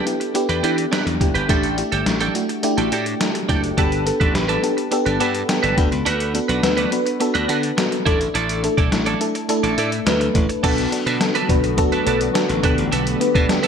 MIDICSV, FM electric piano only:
0, 0, Header, 1, 2, 480
1, 0, Start_track
1, 0, Tempo, 571429
1, 1253, Time_signature, 4, 2, 24, 8
1, 11487, End_track
2, 0, Start_track
2, 0, Title_t, "FM electric piano"
2, 0, Program_c, 0, 5
2, 0, Control_c, 0, 64, 127
2, 0, Note_on_c, 0, 59, 73
2, 0, Note_on_c, 0, 62, 65
2, 0, Note_on_c, 0, 64, 63
2, 0, Note_on_c, 0, 67, 85
2, 0, Note_on_c, 0, 69, 78
2, 47, Note_off_c, 0, 59, 0
2, 47, Note_on_c, 0, 59, 76
2, 51, Note_off_c, 0, 62, 0
2, 51, Note_on_c, 0, 62, 69
2, 54, Note_off_c, 0, 64, 0
2, 54, Note_on_c, 0, 64, 67
2, 57, Note_off_c, 0, 67, 0
2, 57, Note_on_c, 0, 67, 85
2, 238, Note_off_c, 0, 59, 0
2, 240, Note_off_c, 0, 62, 0
2, 242, Note_off_c, 0, 64, 0
2, 243, Note_off_c, 0, 67, 0
2, 287, Note_on_c, 0, 59, 97
2, 291, Note_on_c, 0, 62, 88
2, 294, Note_on_c, 0, 64, 88
2, 298, Note_on_c, 0, 67, 106
2, 478, Note_off_c, 0, 59, 0
2, 480, Note_off_c, 0, 62, 0
2, 481, Note_off_c, 0, 64, 0
2, 483, Note_off_c, 0, 67, 0
2, 526, Note_on_c, 0, 59, 74
2, 530, Note_on_c, 0, 62, 73
2, 534, Note_on_c, 0, 64, 71
2, 537, Note_on_c, 0, 67, 86
2, 717, Note_off_c, 0, 59, 0
2, 719, Note_off_c, 0, 62, 0
2, 721, Note_off_c, 0, 64, 0
2, 723, Note_off_c, 0, 67, 0
2, 767, Note_on_c, 0, 59, 71
2, 770, Note_on_c, 0, 62, 67
2, 773, Note_on_c, 0, 64, 67
2, 777, Note_on_c, 0, 67, 80
2, 958, Note_off_c, 0, 59, 0
2, 960, Note_off_c, 0, 62, 0
2, 961, Note_off_c, 0, 64, 0
2, 963, Note_off_c, 0, 67, 0
2, 1008, Note_on_c, 0, 59, 71
2, 1010, Note_on_c, 0, 62, 67
2, 1013, Note_on_c, 0, 64, 67
2, 1018, Note_on_c, 0, 67, 80
2, 1199, Note_off_c, 0, 59, 0
2, 1200, Note_off_c, 0, 62, 0
2, 1201, Note_off_c, 0, 64, 0
2, 1203, Note_off_c, 0, 67, 0
2, 1246, Note_on_c, 0, 57, 91
2, 1250, Note_on_c, 0, 62, 92
2, 1253, Note_on_c, 0, 64, 85
2, 1257, Note_on_c, 0, 67, 108
2, 1265, Control_c, 0, 64, 0
2, 1271, Note_off_c, 0, 69, 0
2, 1425, Control_c, 0, 64, 127
2, 1438, Note_off_c, 0, 57, 0
2, 1440, Note_off_c, 0, 62, 0
2, 1441, Note_off_c, 0, 64, 0
2, 1443, Note_off_c, 0, 67, 0
2, 1487, Note_on_c, 0, 57, 79
2, 1490, Note_on_c, 0, 62, 69
2, 1493, Note_on_c, 0, 64, 68
2, 1497, Note_on_c, 0, 67, 84
2, 1678, Note_off_c, 0, 57, 0
2, 1680, Note_off_c, 0, 62, 0
2, 1681, Note_off_c, 0, 64, 0
2, 1683, Note_off_c, 0, 67, 0
2, 1728, Note_on_c, 0, 57, 75
2, 1730, Note_on_c, 0, 62, 66
2, 1735, Note_on_c, 0, 64, 64
2, 1738, Note_on_c, 0, 67, 81
2, 1919, Note_off_c, 0, 57, 0
2, 1920, Note_off_c, 0, 62, 0
2, 1922, Note_off_c, 0, 64, 0
2, 1923, Note_off_c, 0, 67, 0
2, 1968, Note_on_c, 0, 57, 74
2, 1970, Note_on_c, 0, 62, 69
2, 1974, Note_on_c, 0, 64, 69
2, 1978, Note_on_c, 0, 66, 84
2, 2158, Note_off_c, 0, 57, 0
2, 2160, Note_off_c, 0, 62, 0
2, 2162, Note_off_c, 0, 64, 0
2, 2164, Note_off_c, 0, 66, 0
2, 2208, Note_on_c, 0, 57, 95
2, 2211, Note_on_c, 0, 62, 91
2, 2216, Note_on_c, 0, 64, 94
2, 2218, Note_on_c, 0, 67, 109
2, 2399, Note_off_c, 0, 57, 0
2, 2400, Note_off_c, 0, 62, 0
2, 2402, Note_off_c, 0, 64, 0
2, 2403, Note_off_c, 0, 67, 0
2, 2448, Note_on_c, 0, 57, 78
2, 2452, Note_on_c, 0, 62, 69
2, 2454, Note_on_c, 0, 64, 70
2, 2459, Note_on_c, 0, 67, 86
2, 2639, Note_off_c, 0, 57, 0
2, 2640, Note_off_c, 0, 62, 0
2, 2642, Note_off_c, 0, 64, 0
2, 2644, Note_off_c, 0, 67, 0
2, 2687, Note_on_c, 0, 57, 76
2, 2691, Note_on_c, 0, 62, 69
2, 2694, Note_on_c, 0, 64, 71
2, 2697, Note_on_c, 0, 69, 81
2, 2878, Note_off_c, 0, 57, 0
2, 2880, Note_off_c, 0, 62, 0
2, 2882, Note_off_c, 0, 64, 0
2, 2883, Note_off_c, 0, 69, 0
2, 2927, Note_on_c, 0, 57, 76
2, 2931, Note_on_c, 0, 62, 67
2, 2934, Note_on_c, 0, 64, 67
2, 2938, Note_on_c, 0, 67, 85
2, 3118, Note_off_c, 0, 57, 0
2, 3120, Note_off_c, 0, 62, 0
2, 3122, Note_off_c, 0, 64, 0
2, 3123, Note_off_c, 0, 67, 0
2, 3169, Note_on_c, 0, 59, 96
2, 3172, Note_on_c, 0, 62, 87
2, 3175, Note_on_c, 0, 67, 83
2, 3178, Note_on_c, 0, 69, 108
2, 3185, Control_c, 0, 64, 0
2, 3340, Control_c, 0, 64, 127
2, 3359, Note_off_c, 0, 59, 0
2, 3360, Note_off_c, 0, 62, 0
2, 3362, Note_off_c, 0, 67, 0
2, 3363, Note_off_c, 0, 69, 0
2, 3407, Note_on_c, 0, 59, 80
2, 3409, Note_on_c, 0, 62, 70
2, 3412, Note_on_c, 0, 67, 70
2, 3416, Note_on_c, 0, 69, 84
2, 3598, Note_off_c, 0, 59, 0
2, 3599, Note_off_c, 0, 62, 0
2, 3601, Note_off_c, 0, 67, 0
2, 3602, Note_off_c, 0, 69, 0
2, 3646, Note_on_c, 0, 59, 76
2, 3648, Note_on_c, 0, 62, 66
2, 3651, Note_on_c, 0, 67, 67
2, 3655, Note_on_c, 0, 71, 82
2, 3837, Note_off_c, 0, 59, 0
2, 3839, Note_off_c, 0, 62, 0
2, 3840, Note_off_c, 0, 67, 0
2, 3842, Note_off_c, 0, 71, 0
2, 3885, Note_on_c, 0, 59, 74
2, 3889, Note_on_c, 0, 62, 70
2, 3893, Note_on_c, 0, 67, 71
2, 3896, Note_on_c, 0, 69, 89
2, 4077, Note_off_c, 0, 59, 0
2, 4079, Note_off_c, 0, 62, 0
2, 4081, Note_off_c, 0, 67, 0
2, 4082, Note_off_c, 0, 69, 0
2, 4128, Note_on_c, 0, 59, 102
2, 4130, Note_on_c, 0, 62, 87
2, 4134, Note_on_c, 0, 67, 94
2, 4137, Note_on_c, 0, 69, 111
2, 4318, Note_off_c, 0, 59, 0
2, 4320, Note_off_c, 0, 62, 0
2, 4322, Note_off_c, 0, 67, 0
2, 4323, Note_off_c, 0, 69, 0
2, 4366, Note_on_c, 0, 59, 80
2, 4370, Note_on_c, 0, 62, 70
2, 4371, Note_on_c, 0, 78, 65
2, 4373, Note_on_c, 0, 67, 76
2, 4377, Note_on_c, 0, 71, 85
2, 4557, Note_off_c, 0, 59, 0
2, 4560, Note_off_c, 0, 62, 0
2, 4561, Note_off_c, 0, 67, 0
2, 4563, Note_off_c, 0, 71, 0
2, 4595, Note_off_c, 0, 78, 0
2, 4609, Note_on_c, 0, 59, 78
2, 4612, Note_on_c, 0, 62, 72
2, 4614, Note_on_c, 0, 67, 69
2, 4614, Note_on_c, 0, 79, 68
2, 4618, Note_on_c, 0, 69, 87
2, 4799, Note_off_c, 0, 59, 0
2, 4800, Note_off_c, 0, 62, 0
2, 4802, Note_off_c, 0, 67, 0
2, 4804, Note_off_c, 0, 69, 0
2, 4837, Note_off_c, 0, 79, 0
2, 4847, Note_on_c, 0, 59, 76
2, 4850, Note_on_c, 0, 62, 73
2, 4852, Note_on_c, 0, 83, 62
2, 4854, Note_on_c, 0, 66, 73
2, 4858, Note_on_c, 0, 69, 88
2, 4863, Control_c, 0, 64, 0
2, 5001, Control_c, 0, 64, 127
2, 5076, Note_off_c, 0, 83, 0
2, 5234, Note_off_c, 0, 59, 0
2, 5236, Note_off_c, 0, 62, 0
2, 5237, Note_off_c, 0, 66, 0
2, 5239, Note_off_c, 0, 69, 0
2, 5328, Note_on_c, 0, 59, 76
2, 5332, Note_on_c, 0, 62, 70
2, 5335, Note_on_c, 0, 66, 70
2, 5338, Note_on_c, 0, 69, 90
2, 5518, Note_off_c, 0, 59, 0
2, 5521, Note_off_c, 0, 62, 0
2, 5522, Note_off_c, 0, 66, 0
2, 5524, Note_off_c, 0, 69, 0
2, 5569, Note_on_c, 0, 59, 73
2, 5571, Note_on_c, 0, 62, 68
2, 5574, Note_on_c, 0, 66, 67
2, 5577, Note_on_c, 0, 71, 82
2, 5759, Note_off_c, 0, 59, 0
2, 5760, Note_off_c, 0, 62, 0
2, 5762, Note_off_c, 0, 66, 0
2, 5763, Note_off_c, 0, 71, 0
2, 5808, Note_on_c, 0, 59, 74
2, 5813, Note_on_c, 0, 62, 72
2, 5815, Note_on_c, 0, 66, 72
2, 5820, Note_on_c, 0, 71, 89
2, 5998, Note_off_c, 0, 59, 0
2, 6001, Note_off_c, 0, 62, 0
2, 6002, Note_off_c, 0, 66, 0
2, 6004, Note_off_c, 0, 71, 0
2, 6047, Note_on_c, 0, 59, 98
2, 6051, Note_on_c, 0, 62, 88
2, 6055, Note_on_c, 0, 66, 91
2, 6058, Note_on_c, 0, 69, 107
2, 6238, Note_off_c, 0, 59, 0
2, 6240, Note_off_c, 0, 62, 0
2, 6242, Note_off_c, 0, 66, 0
2, 6244, Note_off_c, 0, 69, 0
2, 6288, Note_on_c, 0, 59, 78
2, 6291, Note_on_c, 0, 62, 72
2, 6294, Note_on_c, 0, 66, 76
2, 6298, Note_on_c, 0, 69, 83
2, 6479, Note_off_c, 0, 59, 0
2, 6480, Note_off_c, 0, 62, 0
2, 6482, Note_off_c, 0, 66, 0
2, 6483, Note_off_c, 0, 69, 0
2, 6527, Note_on_c, 0, 59, 78
2, 6531, Note_on_c, 0, 62, 72
2, 6534, Note_on_c, 0, 66, 72
2, 6537, Note_on_c, 0, 69, 86
2, 6718, Note_off_c, 0, 59, 0
2, 6720, Note_off_c, 0, 62, 0
2, 6722, Note_off_c, 0, 66, 0
2, 6723, Note_off_c, 0, 69, 0
2, 6770, Note_on_c, 0, 57, 82
2, 6773, Note_on_c, 0, 62, 75
2, 6777, Note_on_c, 0, 64, 75
2, 6779, Note_on_c, 0, 69, 89
2, 6783, Control_c, 0, 64, 0
2, 6944, Control_c, 0, 64, 127
2, 7155, Note_off_c, 0, 57, 0
2, 7157, Note_off_c, 0, 62, 0
2, 7159, Note_off_c, 0, 64, 0
2, 7160, Note_off_c, 0, 69, 0
2, 7249, Note_on_c, 0, 57, 76
2, 7252, Note_on_c, 0, 62, 71
2, 7255, Note_on_c, 0, 64, 72
2, 7259, Note_on_c, 0, 69, 90
2, 7439, Note_off_c, 0, 57, 0
2, 7440, Note_off_c, 0, 62, 0
2, 7442, Note_off_c, 0, 64, 0
2, 7444, Note_off_c, 0, 69, 0
2, 7488, Note_on_c, 0, 57, 78
2, 7492, Note_on_c, 0, 62, 66
2, 7496, Note_on_c, 0, 64, 67
2, 7499, Note_on_c, 0, 69, 80
2, 7679, Note_off_c, 0, 57, 0
2, 7680, Note_off_c, 0, 62, 0
2, 7682, Note_off_c, 0, 64, 0
2, 7684, Note_off_c, 0, 69, 0
2, 7729, Note_on_c, 0, 57, 78
2, 7732, Note_on_c, 0, 62, 68
2, 7735, Note_on_c, 0, 64, 69
2, 7739, Note_on_c, 0, 69, 90
2, 7919, Note_off_c, 0, 57, 0
2, 7921, Note_off_c, 0, 62, 0
2, 7922, Note_off_c, 0, 64, 0
2, 7924, Note_off_c, 0, 69, 0
2, 7969, Note_on_c, 0, 57, 99
2, 7972, Note_on_c, 0, 62, 89
2, 7976, Note_on_c, 0, 64, 91
2, 7978, Note_on_c, 0, 69, 109
2, 8159, Note_off_c, 0, 57, 0
2, 8161, Note_off_c, 0, 62, 0
2, 8162, Note_off_c, 0, 64, 0
2, 8164, Note_off_c, 0, 69, 0
2, 8209, Note_on_c, 0, 57, 76
2, 8213, Note_on_c, 0, 62, 67
2, 8217, Note_on_c, 0, 64, 70
2, 8220, Note_on_c, 0, 69, 85
2, 8399, Note_off_c, 0, 57, 0
2, 8401, Note_off_c, 0, 62, 0
2, 8403, Note_off_c, 0, 64, 0
2, 8405, Note_off_c, 0, 69, 0
2, 8450, Note_on_c, 0, 57, 77
2, 8454, Note_on_c, 0, 62, 71
2, 8456, Note_on_c, 0, 64, 72
2, 8460, Note_on_c, 0, 71, 78
2, 8640, Note_off_c, 0, 57, 0
2, 8641, Note_off_c, 0, 62, 0
2, 8643, Note_off_c, 0, 64, 0
2, 8645, Note_off_c, 0, 71, 0
2, 8689, Note_on_c, 0, 57, 73
2, 8694, Note_on_c, 0, 62, 63
2, 8697, Note_on_c, 0, 64, 68
2, 8699, Note_on_c, 0, 69, 75
2, 8879, Note_off_c, 0, 57, 0
2, 8881, Note_off_c, 0, 62, 0
2, 8883, Note_off_c, 0, 64, 0
2, 8884, Note_off_c, 0, 69, 0
2, 8929, Note_on_c, 0, 59, 93
2, 8932, Note_on_c, 0, 62, 87
2, 8936, Note_on_c, 0, 66, 93
2, 8938, Note_on_c, 0, 69, 113
2, 8944, Control_c, 0, 64, 0
2, 9073, Control_c, 0, 64, 127
2, 9119, Note_off_c, 0, 59, 0
2, 9121, Note_off_c, 0, 62, 0
2, 9123, Note_off_c, 0, 66, 0
2, 9124, Note_off_c, 0, 69, 0
2, 9170, Note_on_c, 0, 59, 80
2, 9174, Note_on_c, 0, 62, 73
2, 9177, Note_on_c, 0, 66, 74
2, 9180, Note_on_c, 0, 69, 84
2, 9360, Note_off_c, 0, 59, 0
2, 9361, Note_off_c, 0, 62, 0
2, 9363, Note_off_c, 0, 66, 0
2, 9365, Note_off_c, 0, 69, 0
2, 9409, Note_on_c, 0, 59, 77
2, 9412, Note_on_c, 0, 62, 68
2, 9416, Note_on_c, 0, 66, 69
2, 9420, Note_on_c, 0, 69, 86
2, 9599, Note_off_c, 0, 59, 0
2, 9601, Note_off_c, 0, 62, 0
2, 9602, Note_off_c, 0, 66, 0
2, 9604, Note_off_c, 0, 69, 0
2, 9650, Note_on_c, 0, 59, 81
2, 9653, Note_on_c, 0, 62, 71
2, 9656, Note_on_c, 0, 66, 74
2, 9660, Note_on_c, 0, 71, 84
2, 9839, Note_off_c, 0, 59, 0
2, 9841, Note_off_c, 0, 62, 0
2, 9843, Note_off_c, 0, 66, 0
2, 9844, Note_off_c, 0, 71, 0
2, 9888, Note_on_c, 0, 59, 97
2, 9892, Note_on_c, 0, 62, 99
2, 9895, Note_on_c, 0, 66, 96
2, 9900, Note_on_c, 0, 69, 115
2, 10079, Note_off_c, 0, 59, 0
2, 10081, Note_off_c, 0, 62, 0
2, 10082, Note_off_c, 0, 66, 0
2, 10084, Note_off_c, 0, 69, 0
2, 10127, Note_on_c, 0, 59, 84
2, 10131, Note_on_c, 0, 62, 71
2, 10135, Note_on_c, 0, 66, 75
2, 10138, Note_on_c, 0, 69, 84
2, 10318, Note_off_c, 0, 59, 0
2, 10320, Note_off_c, 0, 62, 0
2, 10322, Note_off_c, 0, 66, 0
2, 10324, Note_off_c, 0, 69, 0
2, 10367, Note_on_c, 0, 59, 104
2, 10371, Note_on_c, 0, 62, 97
2, 10374, Note_on_c, 0, 66, 92
2, 10377, Note_on_c, 0, 69, 115
2, 10558, Note_off_c, 0, 59, 0
2, 10560, Note_off_c, 0, 62, 0
2, 10561, Note_off_c, 0, 66, 0
2, 10563, Note_off_c, 0, 69, 0
2, 10608, Note_on_c, 0, 59, 83
2, 10611, Note_on_c, 0, 62, 75
2, 10614, Note_on_c, 0, 67, 76
2, 10617, Note_on_c, 0, 69, 91
2, 10623, Control_c, 0, 64, 0
2, 10770, Control_c, 0, 64, 127
2, 10995, Note_off_c, 0, 59, 0
2, 10996, Note_off_c, 0, 62, 0
2, 10998, Note_off_c, 0, 67, 0
2, 10999, Note_off_c, 0, 69, 0
2, 11088, Note_on_c, 0, 59, 85
2, 11092, Note_on_c, 0, 62, 72
2, 11095, Note_on_c, 0, 67, 70
2, 11098, Note_on_c, 0, 71, 85
2, 11278, Note_off_c, 0, 59, 0
2, 11280, Note_off_c, 0, 62, 0
2, 11282, Note_off_c, 0, 67, 0
2, 11283, Note_off_c, 0, 71, 0
2, 11328, Note_on_c, 0, 59, 77
2, 11331, Note_on_c, 0, 62, 73
2, 11334, Note_on_c, 0, 67, 72
2, 11338, Note_on_c, 0, 69, 83
2, 11487, Note_off_c, 0, 59, 0
2, 11487, Note_off_c, 0, 62, 0
2, 11487, Note_off_c, 0, 67, 0
2, 11487, Note_off_c, 0, 69, 0
2, 11487, End_track
0, 0, End_of_file